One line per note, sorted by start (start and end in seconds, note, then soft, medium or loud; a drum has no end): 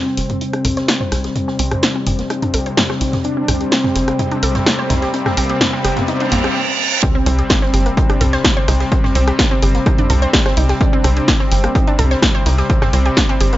0.00 0.39 C3 medium
0.00 0.39 G3 medium
0.00 0.39 C4 medium
0.00 0.79 C4 loud
0.00 riser medium
0.06 0.11 C4 medium
0.06 snare soft
0.17 0.35 G1 medium
0.17 0.23 G4 medium
0.17 snare soft
0.17 closed hi-hat medium
0.17 open hi-hat medium
0.29 0.39 A#3 medium
0.29 closed hi-hat soft
0.29 mid tom medium
0.41 1.33 C3 medium
0.41 1.33 G3 medium
0.41 1.33 C4 medium
0.41 0.47 D#4 medium
0.41 closed hi-hat medium
0.41 closed hi-hat soft
0.53 0.62 D4 medium
0.53 cross-stick soft
0.53 closed hi-hat soft
0.65 0.82 C2 medium
0.65 0.77 A4 loud
0.65 closed hi-hat medium
0.65 mid tom medium
0.65 open hi-hat loud
0.77 0.82 C5 loud
0.77 snare soft
0.77 closed hi-hat soft
0.88 0.94 G3 loud
0.88 snare loud
0.88 closed hi-hat medium
0.88 closed hi-hat soft
1.01 1.06 C5 loud
1.01 mid tom medium
1.12 1.29 C2 medium
1.12 1.18 D#4 medium
1.12 cross-stick soft
1.12 snare soft
1.12 closed hi-hat medium
1.12 open hi-hat medium
1.24 1.33 G4 medium
1.24 snare soft
1.24 closed hi-hat soft
1.35 2.28 C3 medium
1.35 2.28 G3 medium
1.35 2.28 C4 medium
1.35 1.41 C4 medium
1.35 closed hi-hat medium
1.35 closed hi-hat soft
1.35 mid tom medium
1.47 1.57 C4 loud
1.47 snare soft
1.59 1.76 C2 medium
1.59 1.69 C4 loud
1.59 closed hi-hat medium
1.59 open hi-hat loud
1.71 1.80 G4 medium
1.71 cross-stick soft
1.71 closed hi-hat soft
1.71 mid tom medium
1.82 1.92 D4 medium
1.82 snare loud
1.82 closed hi-hat medium
1.82 closed hi-hat soft
1.95 2.01 C4 loud
2.06 2.24 G1 medium
2.06 2.12 G4 medium
2.06 closed hi-hat medium
2.06 mid tom medium
2.06 open hi-hat medium
2.19 2.28 A#3 medium
2.19 snare soft
2.19 closed hi-hat soft
2.30 3.22 C3 medium
2.30 3.22 G3 medium
2.30 3.22 C4 medium
2.30 2.36 D#4 medium
2.30 cross-stick soft
2.30 closed hi-hat medium
2.30 closed hi-hat soft
2.42 2.51 D4 loud
2.42 closed hi-hat soft
2.42 mid tom medium
2.54 2.71 C2 medium
2.54 2.66 A4 loud
2.54 closed hi-hat medium
2.54 open hi-hat loud
2.66 2.71 C5 loud
2.66 closed hi-hat soft
2.77 2.83 G3 loud
2.77 snare loud
2.77 closed hi-hat soft
2.77 closed hi-hat medium
2.77 mid tom medium
2.90 2.95 C5 loud
2.90 cross-stick soft
2.90 snare soft
3.01 3.18 C2 loud
3.01 3.07 D#4 medium
3.01 open hi-hat medium
3.13 3.22 G4 medium
3.13 snare soft
3.13 closed hi-hat soft
3.13 mid tom medium
3.24 4.17 C3 medium
3.24 4.17 G3 medium
3.24 3.30 C4 medium
3.24 4.17 C4 medium
3.24 3.73 D4 loud
3.24 closed hi-hat medium
3.24 closed hi-hat soft
3.37 3.46 C4 loud
3.48 3.65 C2 loud
3.48 3.58 C4 loud
3.48 cross-stick medium
3.48 closed hi-hat medium
3.48 mid tom medium
3.48 open hi-hat loud
3.61 3.69 G4 medium
3.61 closed hi-hat soft
3.71 4.57 C4 loud
3.71 3.81 D4 medium
3.71 snare loud
3.71 closed hi-hat soft
3.71 closed hi-hat medium
3.84 3.89 C4 loud
3.84 snare soft
3.84 mid tom medium
3.95 4.13 G1 medium
3.95 4.01 G4 medium
3.95 snare soft
3.95 closed hi-hat medium
3.95 open hi-hat loud
4.08 4.17 A#3 medium
4.08 cross-stick soft
4.08 closed hi-hat soft
4.19 5.11 C3 medium
4.19 5.11 G3 medium
4.19 5.11 C4 medium
4.19 4.25 D#4 medium
4.19 closed hi-hat medium
4.19 closed hi-hat soft
4.19 mid tom medium
4.31 4.40 D4 loud
4.31 closed hi-hat soft
4.43 4.60 C2 medium
4.43 4.55 A4 loud
4.43 closed hi-hat medium
4.43 open hi-hat loud
4.54 4.60 C5 loud
4.54 snare medium
4.54 closed hi-hat soft
4.54 mid tom medium
4.66 4.72 G3 loud
4.66 cross-stick medium
4.66 snare loud
4.66 closed hi-hat medium
4.66 closed hi-hat soft
4.79 4.84 C5 loud
4.90 5.07 C2 loud
4.90 4.96 D#4 medium
4.90 snare medium
4.90 closed hi-hat medium
4.90 mid tom medium
4.90 open hi-hat loud
5.02 5.11 G4 medium
5.02 snare soft
5.02 closed hi-hat soft
5.14 6.06 C3 medium
5.14 6.05 G3 medium
5.14 6.05 C4 medium
5.14 5.19 C4 medium
5.14 closed hi-hat medium
5.14 closed hi-hat soft
5.26 5.35 C4 loud
5.26 cross-stick medium
5.26 snare soft
5.26 mid tom medium
5.37 5.54 C2 loud
5.37 5.47 C4 loud
5.37 closed hi-hat medium
5.37 open hi-hat loud
5.50 5.58 G4 medium
5.50 closed hi-hat soft
5.61 5.70 D4 medium
5.61 snare loud
5.61 closed hi-hat medium
5.61 closed hi-hat soft
5.61 mid tom medium
5.73 5.78 C4 loud
5.84 6.02 G1 loud
5.84 5.90 G4 medium
5.84 cross-stick medium
5.84 closed hi-hat medium
5.84 open hi-hat loud
5.97 6.06 A#3 medium
5.97 snare soft
5.97 closed hi-hat soft
5.97 mid tom medium
6.08 6.55 C3 medium
6.08 6.55 G3 medium
6.08 6.55 C4 medium
6.08 6.14 D#4 medium
6.08 closed hi-hat medium
6.08 closed hi-hat soft
6.08 reverse cymbal medium
6.20 6.29 D4 loud
6.20 closed hi-hat soft
6.32 6.49 A#1 medium
6.32 6.44 A#3 loud
6.32 closed hi-hat medium
6.32 mid tom medium
6.32 open hi-hat loud
6.44 6.53 C4 medium
6.44 cross-stick medium
6.44 closed hi-hat soft
7.03 7.95 C3 medium
7.03 7.95 G3 medium
7.03 7.08 C4 medium
7.03 7.95 C4 medium
7.03 7.46 C4 loud
7.03 7.08 C5 medium
7.03 kick loud
7.03 closed hi-hat medium
7.03 closed hi-hat soft
7.03 sub drop medium
7.15 7.24 C4 loud
7.15 7.24 C5 medium
7.26 7.43 C2 loud
7.26 7.36 C4 loud
7.26 7.36 C5 medium
7.26 closed hi-hat medium
7.26 open hi-hat loud
7.39 7.47 G4 medium
7.39 7.47 G5 medium
7.39 closed hi-hat soft
7.49 8.35 C4 loud
7.49 7.59 D4 medium
7.49 7.59 D5 medium
7.49 kick loud
7.49 cross-stick soft
7.49 snare loud
7.49 closed hi-hat medium
7.49 closed hi-hat soft
7.62 7.67 C4 loud
7.62 7.67 C5 medium
7.62 snare soft
7.74 7.91 G1 medium
7.74 7.79 G4 medium
7.74 7.79 G5 medium
7.74 snare soft
7.74 closed hi-hat medium
7.74 open hi-hat medium
7.86 7.95 A#3 medium
7.86 7.95 A#4 medium
7.86 closed hi-hat soft
7.97 8.42 C3 medium
7.97 8.42 G3 medium
7.97 8.42 C4 medium
7.97 8.03 D#4 medium
7.97 8.03 D#5 medium
7.97 kick loud
7.97 closed hi-hat soft
7.97 closed hi-hat medium
8.10 8.18 D4 loud
8.10 8.18 D5 medium
8.10 cross-stick medium
8.10 closed hi-hat soft
8.21 8.38 C2 medium
8.21 8.33 A4 loud
8.21 8.33 A5 medium
8.21 closed hi-hat medium
8.21 mid tom medium
8.21 open hi-hat loud
8.33 8.38 C5 loud
8.33 8.38 C6 medium
8.33 snare medium
8.33 closed hi-hat soft
8.44 8.65 C3 medium
8.44 8.65 G3 medium
8.44 8.50 G3 loud
8.44 8.65 C4 medium
8.44 8.50 G4 medium
8.44 kick loud
8.44 snare loud
8.44 closed hi-hat soft
8.57 8.62 C5 loud
8.57 8.62 C6 medium
8.68 8.85 C2 loud
8.68 8.89 C3 medium
8.68 8.89 G3 medium
8.68 8.89 C4 medium
8.68 8.74 D#4 medium
8.68 8.74 D#5 medium
8.68 cross-stick medium
8.68 snare soft
8.68 closed hi-hat medium
8.68 open hi-hat loud
8.80 8.89 G4 medium
8.80 8.89 G5 medium
8.80 snare medium
8.80 closed hi-hat soft
8.92 9.84 C3 medium
8.92 9.84 G3 medium
8.92 8.97 C4 medium
8.92 9.84 C4 medium
8.92 8.97 C5 medium
8.92 kick loud
8.92 closed hi-hat medium
8.92 closed hi-hat soft
9.04 9.13 C4 loud
9.04 9.13 C5 medium
9.04 snare soft
9.04 mid tom medium
9.15 9.32 C2 loud
9.15 9.25 C4 loud
9.15 9.25 C5 medium
9.15 closed hi-hat medium
9.15 open hi-hat loud
9.28 9.36 G4 medium
9.28 9.36 G5 medium
9.28 cross-stick medium
9.28 closed hi-hat soft
9.39 9.48 D4 medium
9.39 9.48 D5 medium
9.39 kick loud
9.39 snare loud
9.39 closed hi-hat soft
9.39 closed hi-hat medium
9.51 9.56 C4 loud
9.51 9.56 C5 medium
9.62 9.80 G1 loud
9.62 9.68 G4 medium
9.62 9.68 G5 medium
9.62 closed hi-hat medium
9.62 open hi-hat loud
9.75 9.83 A#3 medium
9.75 9.83 A#4 medium
9.75 snare soft
9.75 closed hi-hat soft
9.86 10.31 C3 medium
9.86 10.31 G3 medium
9.86 10.31 C4 medium
9.86 9.92 D#4 medium
9.86 9.92 D#5 medium
9.86 kick loud
9.86 cross-stick soft
9.86 closed hi-hat medium
9.86 closed hi-hat soft
9.98 10.07 D4 loud
9.98 10.07 D5 medium
9.98 closed hi-hat soft
9.98 mid tom medium
10.10 10.27 C2 medium
10.10 10.21 A4 loud
10.10 10.21 A5 medium
10.10 closed hi-hat medium
10.10 mid tom medium
10.10 open hi-hat loud
10.22 10.27 C5 loud
10.22 10.27 C6 medium
10.22 closed hi-hat soft
10.33 10.54 C3 medium
10.33 10.39 G3 loud
10.33 10.54 G3 medium
10.33 10.54 C4 medium
10.33 10.39 G4 medium
10.33 kick loud
10.33 snare loud
10.33 closed hi-hat soft
10.46 10.51 C5 loud
10.46 10.51 C6 medium
10.46 cross-stick medium
10.46 snare medium
10.57 10.74 C2 loud
10.57 10.78 C3 medium
10.57 10.78 G3 medium
10.57 10.78 C4 medium
10.57 10.63 D#4 medium
10.57 10.63 D#5 medium
10.57 open hi-hat medium
10.57 open hi-hat loud
10.69 10.78 G4 medium
10.69 10.78 G5 medium
10.69 snare soft
10.69 closed hi-hat soft
10.81 11.72 C3 medium
10.81 11.72 G3 medium
10.81 11.72 C4 medium
10.81 10.86 C4 medium
10.81 11.24 D4 loud
10.81 10.86 C5 medium
10.81 kick loud
10.81 closed hi-hat soft
10.81 closed hi-hat medium
10.93 11.02 C4 loud
10.93 11.02 C5 medium
11.04 11.21 C2 loud
11.04 11.14 C4 loud
11.04 11.14 C5 medium
11.04 cross-stick medium
11.04 closed hi-hat medium
11.04 open hi-hat loud
11.17 11.25 G4 medium
11.17 11.25 G5 medium
11.17 closed hi-hat soft
11.28 12.13 C4 loud
11.28 11.37 D4 medium
11.28 11.37 D5 medium
11.28 kick loud
11.28 snare loud
11.28 closed hi-hat soft
11.28 closed hi-hat medium
11.40 11.45 C4 loud
11.40 11.45 C5 medium
11.40 snare soft
11.51 11.69 G1 loud
11.51 11.57 G4 medium
11.51 11.57 G5 medium
11.51 snare medium
11.51 closed hi-hat medium
11.51 open hi-hat loud
11.63 11.72 A#3 medium
11.63 11.72 A#4 medium
11.63 cross-stick medium
11.63 closed hi-hat soft
11.75 12.20 C3 medium
11.75 12.20 G3 medium
11.75 12.20 C4 medium
11.75 11.81 D#4 medium
11.75 11.81 D#5 medium
11.75 kick loud
11.75 closed hi-hat soft
11.75 closed hi-hat medium
11.87 11.96 D4 loud
11.87 11.96 D5 medium
11.87 closed hi-hat soft
11.98 12.16 C2 medium
11.98 12.10 A4 loud
11.98 12.10 A5 medium
11.98 closed hi-hat medium
11.98 mid tom medium
11.98 open hi-hat loud
12.11 12.16 C5 loud
12.11 12.16 C6 medium
12.11 snare soft
12.11 closed hi-hat soft
12.22 12.43 C3 medium
12.22 12.43 G3 medium
12.22 12.28 G3 loud
12.22 12.43 C4 medium
12.22 12.28 G4 medium
12.22 kick loud
12.22 cross-stick medium
12.22 snare loud
12.22 closed hi-hat soft
12.35 12.40 C5 loud
12.35 12.40 C6 medium
12.46 12.63 C2 loud
12.46 12.67 C3 medium
12.46 12.67 G3 medium
12.46 12.67 C4 medium
12.46 12.52 D#4 medium
12.46 12.52 D#5 medium
12.46 snare medium
12.46 closed hi-hat medium
12.46 open hi-hat medium
12.58 12.67 G4 medium
12.58 12.67 G5 medium
12.58 snare soft
12.58 closed hi-hat soft
12.70 13.57 C3 medium
12.70 13.57 G3 medium
12.70 13.57 C4 medium
12.70 12.75 C4 medium
12.70 12.75 C5 medium
12.70 kick loud
12.70 closed hi-hat soft
12.70 closed hi-hat medium
12.82 12.91 C4 loud
12.82 12.91 C5 medium
12.82 cross-stick medium
12.82 snare soft
12.82 mid tom medium
12.93 13.10 C2 loud
12.93 13.03 C4 loud
12.93 13.03 C5 medium
12.93 closed hi-hat medium
12.93 open hi-hat loud
13.06 13.14 G4 medium
13.06 13.14 G5 medium
13.06 closed hi-hat soft
13.16 13.26 D4 medium
13.16 13.26 D5 medium
13.16 kick loud
13.16 snare loud
13.16 closed hi-hat medium
13.16 closed hi-hat soft
13.29 13.34 C4 loud
13.29 13.34 C5 medium
13.29 closed hi-hat soft
13.40 13.57 G1 loud
13.40 13.46 G4 medium
13.40 13.46 G5 medium
13.40 closed hi-hat medium
13.40 open hi-hat loud
13.52 13.57 A#3 medium
13.52 13.57 A#4 medium
13.52 snare soft
13.52 closed hi-hat soft